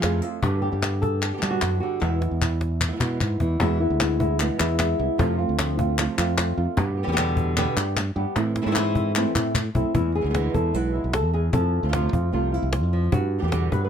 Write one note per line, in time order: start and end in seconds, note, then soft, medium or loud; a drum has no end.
0.01 0.23 E2 medium
0.01 0.20 F2 medium
0.01 0.22 C3 soft
0.01 0.22 F3 medium
0.01 0.22 A3 medium
0.01 0.22 C4 medium
0.01 0.21 F4 medium
0.01 0.22 G#4 medium
0.01 cajon slap medium
0.01 clap medium
0.22 0.43 F2 medium
0.22 0.43 A3 soft
0.22 0.43 C4 soft
0.22 0.42 F4 soft
0.22 0.61 A4 medium
0.42 0.68 G2 medium
0.42 2.00 G2 medium
0.42 0.62 B2 medium
0.42 0.62 D3 medium
0.42 1.82 D3 soft
0.42 0.62 G3 medium
0.42 0.62 B3 medium
0.42 3.02 B3 soft
0.42 2.01 D4 soft
0.42 0.61 G4 medium
0.42 cajon bass medium
0.62 0.83 G3 soft
0.62 0.82 B3 soft
0.62 0.71 G4 medium
0.62 0.81 G4 soft
0.62 cajon slap soft
0.72 1.31 G2 medium
0.72 1.01 G4 medium
0.82 1.22 G3 soft
0.82 1.22 B3 soft
0.82 1.21 G4 soft
0.82 cajon slap medium
0.82 clap medium
1.02 1.21 A4 medium
1.02 cajon bass medium
1.21 1.50 G4 medium
1.21 muted nylon-string guitar stroke soft
1.21 clap medium
1.33 1.36 D3 soft
1.33 1.37 G3 soft
1.33 1.37 B3 soft
1.33 1.37 G4 soft
1.37 1.41 D3 soft
1.37 1.41 G3 soft
1.37 1.42 B3 medium
1.37 1.42 G4 medium
1.42 1.61 B2 medium
1.42 1.60 D3 medium
1.42 1.59 G3 medium
1.42 1.61 G3 medium
1.42 1.62 B3 medium
1.42 1.62 G4 medium
1.42 clap medium
1.51 1.79 F#4 medium
1.61 1.79 F#2 medium
1.61 1.81 D3 soft
1.61 1.81 G3 soft
1.61 1.81 B3 soft
1.61 1.80 G4 soft
1.61 cajon slap medium
1.61 clap medium
1.80 2.02 D3 medium
1.80 2.02 G3 soft
1.80 2.01 B3 soft
1.80 2.00 F#4 medium
1.80 2.01 G4 soft
2.00 2.27 E2 medium
2.00 5.19 E2 medium
2.00 2.20 B2 medium
2.00 2.21 E3 medium
2.00 2.21 G#3 medium
2.00 2.21 B3 medium
2.00 3.60 E4 medium
2.00 2.20 E4 medium
2.00 cajon slap medium
2.21 2.42 G#3 soft
2.21 2.41 B3 soft
2.21 2.40 E4 soft
2.21 cajon slap medium
2.31 2.90 E2 medium
2.41 2.81 G#3 soft
2.41 2.81 B3 soft
2.41 2.80 E4 soft
2.41 cajon bass medium
2.41 clap medium
2.61 cajon slap medium
2.81 muted nylon-string guitar stroke soft
2.81 cajon bass medium
2.81 clap medium
2.88 2.91 E3 soft
2.88 2.91 G#3 soft
2.88 2.91 B3 soft
2.88 2.92 E4 soft
2.92 2.95 E3 soft
2.92 2.96 G#3 soft
2.92 2.96 B3 soft
2.92 2.96 E4 soft
2.96 3.00 E3 soft
2.96 3.00 G#3 soft
2.96 3.01 B3 medium
2.96 3.01 E4 medium
2.96 cajon bass medium
3.01 3.20 B2 medium
3.01 3.19 B2 medium
3.01 3.19 E3 medium
3.01 3.20 G#3 medium
3.01 3.20 B3 medium
3.01 3.60 B3 soft
3.01 3.21 E4 medium
3.01 clap medium
3.20 3.39 G#2 medium
3.20 3.40 E3 soft
3.20 3.40 G#3 soft
3.20 3.40 B3 soft
3.20 3.39 E4 soft
3.20 cajon bass medium
3.20 clap medium
3.40 3.59 E2 medium
3.40 3.58 E3 soft
3.40 3.61 G#3 soft
3.40 3.60 B3 soft
3.40 3.60 E4 soft
3.40 cajon bass medium
3.60 3.86 E2 medium
3.60 3.79 B2 medium
3.60 3.80 B2 medium
3.60 3.80 E3 medium
3.60 3.80 G#3 medium
3.60 3.80 B3 medium
3.60 3.79 E4 medium
3.60 cajon bass medium
3.60 cajon slap soft
3.80 3.99 G#3 soft
3.80 4.00 B3 soft
3.80 3.99 B3 soft
3.80 3.99 E4 medium
3.80 3.99 E4 soft
3.90 4.49 D2 medium
4.00 4.19 E3 medium
4.00 4.19 G#3 medium
4.00 4.19 B3 medium
4.00 4.18 E4 medium
4.00 muted nylon-string guitar stroke soft
4.00 cajon slap medium
4.00 clap medium
4.19 4.38 G#3 soft
4.19 4.40 G#3 soft
4.19 4.39 B3 soft
4.19 4.39 E4 medium
4.19 4.39 E4 soft
4.19 cajon bass medium
4.39 4.59 B2 medium
4.39 4.59 E3 medium
4.39 4.59 G#3 medium
4.39 4.60 B3 medium
4.39 4.58 E4 medium
4.39 muted nylon-string guitar stroke medium
4.39 clap medium
4.58 4.93 E2 medium
4.58 4.79 G#3 soft
4.58 4.79 B3 soft
4.58 4.78 E4 medium
4.58 4.79 E4 soft
4.58 clap medium
4.79 5.19 G#3 soft
4.79 5.19 B3 soft
4.79 5.18 E4 soft
4.79 muted nylon-string guitar stroke soft
4.79 cajon slap loud
4.79 clap medium
4.99 5.08 C2 medium
4.99 5.19 G#3 soft
4.99 5.19 B3 soft
4.99 5.18 E4 soft
5.18 5.44 F2 medium
5.18 5.38 C3 medium
5.18 5.38 F3 medium
5.18 5.38 A3 medium
5.18 5.38 C4 medium
5.18 5.37 F4 medium
5.18 cajon bass medium
5.38 5.57 A3 soft
5.38 5.58 A3 soft
5.38 5.58 C4 medium
5.38 5.58 C4 soft
5.38 5.57 F4 medium
5.38 5.58 F4 soft
5.49 6.07 D2 medium
5.58 5.77 F3 medium
5.58 5.78 A3 medium
5.58 5.77 C4 medium
5.58 5.76 F4 medium
5.58 muted nylon-string guitar stroke medium
5.58 cajon slap medium
5.58 clap medium
5.77 5.98 A3 soft
5.77 5.97 C4 soft
5.77 5.98 C4 soft
5.77 5.97 F4 soft
5.77 cajon bass medium
5.98 6.17 C3 medium
5.98 6.18 F3 medium
5.98 6.18 A3 medium
5.98 6.18 C4 medium
5.98 6.17 F4 medium
5.98 muted nylon-string guitar stroke medium
5.98 clap medium
6.18 6.52 F2 medium
6.18 6.38 A3 soft
6.18 6.37 A3 soft
6.18 6.37 C4 soft
6.18 6.36 F4 medium
6.18 6.37 F4 soft
6.18 clap medium
6.37 6.77 A3 soft
6.37 6.77 C4 soft
6.37 6.76 F4 medium
6.37 muted nylon-string guitar stroke soft
6.37 cajon slap medium
6.37 clap medium
6.57 6.66 F2 medium
6.57 6.78 A3 soft
6.57 6.77 C4 soft
6.57 6.76 F4 soft
6.77 7.02 G2 medium
6.77 6.96 B2 medium
6.77 6.97 D3 medium
6.77 6.97 G3 medium
6.77 6.97 B3 medium
6.77 6.96 G4 medium
6.77 muted nylon-string guitar stroke medium
6.77 cajon bass medium
6.77 cajon slap soft
6.97 7.17 G3 soft
6.97 7.17 B3 soft
6.97 7.16 G4 soft
7.03 7.65 E2 medium
7.03 7.07 D3 medium
7.03 7.07 G3 medium
7.03 7.07 B3 medium
7.03 7.08 G4 medium
7.08 7.11 D3 medium
7.08 7.11 G3 medium
7.08 7.12 B3 medium
7.08 7.12 G4 medium
7.12 7.16 D3 medium
7.12 7.16 G3 medium
7.12 7.17 B3 medium
7.12 7.17 G4 medium
7.17 7.55 B2 medium
7.17 7.56 D3 medium
7.17 7.56 G3 medium
7.17 7.56 B3 medium
7.17 7.56 G4 medium
7.17 muted nylon-string guitar stroke medium
7.17 cajon slap medium
7.17 clap medium
7.36 7.56 G3 soft
7.36 7.56 B3 soft
7.36 7.56 G4 soft
7.36 cajon bass medium
7.56 7.75 B2 medium
7.56 7.76 B2 medium
7.56 7.76 D3 medium
7.56 7.76 G3 medium
7.56 7.76 B3 medium
7.56 7.75 G4 medium
7.56 clap medium
7.76 8.10 G2 medium
7.76 7.95 G3 soft
7.76 7.96 G3 soft
7.76 7.95 B3 soft
7.76 7.96 B3 soft
7.76 7.95 G4 soft
7.76 clap medium
7.96 muted nylon-string guitar stroke soft
7.96 cajon slap medium
7.96 clap medium
8.16 8.24 G2 medium
8.16 8.36 G3 soft
8.16 8.36 B3 soft
8.16 8.35 G4 soft
8.16 8.35 G4 medium
8.36 8.61 A2 medium
8.36 8.55 E3 medium
8.36 8.55 A3 medium
8.36 8.55 C4 medium
8.36 8.54 E4 medium
8.36 muted nylon-string guitar stroke medium
8.36 cajon slap medium
8.55 8.75 A3 soft
8.55 8.75 C4 soft
8.55 8.74 E4 soft
8.55 cajon slap medium
8.62 8.65 E3 soft
8.62 8.66 A3 medium
8.62 8.66 C4 medium
8.62 8.67 E4 medium
8.66 9.24 G#2 medium
8.66 8.70 E3 medium
8.66 8.70 A3 medium
8.66 8.71 C4 medium
8.66 8.71 E4 medium
8.71 8.74 E3 medium
8.71 8.78 A3 medium
8.71 8.75 C4 medium
8.71 8.75 E4 medium
8.75 9.13 E3 medium
8.75 9.15 C4 medium
8.75 9.15 E4 medium
8.75 muted nylon-string guitar stroke soft
8.75 cajon slap medium
8.75 clap medium
8.95 9.15 A3 soft
8.95 9.15 C4 soft
8.95 9.14 E4 soft
8.95 cajon bass medium
9.15 9.34 E3 medium
9.15 9.34 A3 medium
9.15 9.35 A3 medium
9.15 9.35 C4 medium
9.15 9.34 E4 medium
9.15 clap medium
9.35 9.69 A2 medium
9.35 9.54 A3 soft
9.35 9.54 C4 soft
9.35 9.54 E4 soft
9.35 cajon bass medium
9.35 clap medium
9.55 muted nylon-string guitar stroke medium
9.55 cajon bass medium
9.55 clap medium
9.75 9.83 B1 medium
9.75 9.95 A3 soft
9.75 9.94 C4 medium
9.75 9.94 C4 soft
9.75 9.94 E4 soft
9.75 9.94 E4 medium
9.75 cajon bass medium
9.95 11.32 E2 medium
9.95 10.20 E2 medium
9.95 10.34 G#3 soft
9.95 11.52 B3 soft
9.95 10.15 E4 medium
9.95 muted nylon-string guitar stroke medium
9.95 cajon bass medium
10.15 10.54 G#4 medium
10.21 10.49 D2 medium
10.21 10.24 E3 soft
10.21 10.25 G#3 soft
10.21 10.25 B3 soft
10.21 10.25 E4 soft
10.25 10.29 E3 soft
10.25 10.29 G#3 soft
10.25 10.30 B3 soft
10.25 10.30 E4 soft
10.30 10.34 E3 soft
10.30 10.34 G#3 medium
10.30 10.34 B3 medium
10.30 10.34 E4 medium
10.34 10.53 B2 medium
10.34 10.54 E3 medium
10.34 11.51 G#3 medium
10.34 10.54 G#3 medium
10.34 10.54 B3 medium
10.34 10.53 E4 medium
10.34 cajon slap medium
10.54 10.71 E2 medium
10.54 10.74 G#3 soft
10.54 10.74 B3 soft
10.54 10.73 E4 soft
10.54 10.74 A4 medium
10.54 cajon bass medium
10.74 10.99 B1 medium
10.74 10.93 B2 medium
10.74 10.93 E3 medium
10.74 10.93 G#3 medium
10.74 10.94 B3 medium
10.74 10.93 E4 medium
10.74 11.14 B4 medium
10.94 11.12 G#3 soft
10.94 11.13 B3 soft
10.94 11.13 E4 soft
10.94 11.51 E4 soft
11.04 11.24 B1 medium
11.13 11.34 A4 medium
11.13 muted nylon-string guitar stroke soft
11.13 cajon slap medium
11.24 11.49 E2 medium
11.34 11.52 E2 medium
11.34 11.53 G#4 medium
11.53 13.10 F2 medium
11.53 11.78 F2 medium
11.53 11.92 F3 soft
11.53 13.10 A3 soft
11.53 13.11 C4 soft
11.53 11.93 A4 medium
11.53 muted nylon-string guitar stroke medium
11.53 cajon bass medium
11.74 cajon slap soft
11.83 12.08 D2 medium
11.83 11.87 F3 soft
11.83 11.88 A3 soft
11.83 11.88 C4 soft
11.83 11.89 F4 soft
11.89 11.92 F3 soft
11.89 11.93 A3 soft
11.89 11.93 C4 soft
11.89 11.93 F4 medium
11.93 12.12 C3 medium
11.93 12.92 F3 medium
11.93 12.12 F3 medium
11.93 12.13 A3 medium
11.93 12.13 C4 medium
11.93 12.32 F4 medium
11.93 12.11 F4 medium
11.93 cajon slap medium
12.12 12.30 F2 medium
12.12 12.32 A3 soft
12.12 12.32 C4 soft
12.12 12.32 F4 soft
12.12 cajon bass medium
12.32 12.58 C2 medium
12.32 12.52 C3 medium
12.32 12.52 F3 medium
12.32 12.52 A3 medium
12.32 12.52 C4 medium
12.32 12.54 F4 medium
12.32 12.51 F4 medium
12.52 12.71 A3 soft
12.52 12.72 C4 soft
12.52 12.73 E4 medium
12.52 12.71 F4 soft
12.63 12.82 C2 medium
12.72 13.13 F4 medium
12.72 muted nylon-string guitar stroke soft
12.72 cajon slap medium
12.82 13.08 F2 medium
12.93 13.10 F3 medium
13.12 13.89 G2 medium
13.12 13.38 G2 medium
13.12 13.82 F#4 medium
13.12 muted nylon-string guitar stroke medium
13.12 cajon bass medium
13.38 13.67 E2 medium
13.38 13.42 D3 soft
13.38 13.42 G3 soft
13.38 13.43 B3 soft
13.38 13.43 G4 soft
13.38 13.72 G4 medium
13.43 13.46 D3 soft
13.43 13.47 G3 soft
13.43 13.47 B3 soft
13.43 13.48 G4 medium
13.47 13.51 D3 medium
13.47 13.52 G3 medium
13.47 13.52 B3 medium
13.47 13.52 G4 medium
13.52 13.71 B2 medium
13.52 13.89 D3 medium
13.52 13.71 D3 medium
13.52 13.72 G3 medium
13.52 13.72 B3 medium
13.52 13.70 G4 medium
13.52 cajon slap medium
13.71 13.89 G2 medium
13.71 13.89 G3 soft
13.71 13.89 B3 soft
13.71 13.89 G4 soft
13.71 13.83 B4 medium
13.71 cajon bass medium
13.85 13.89 B4 medium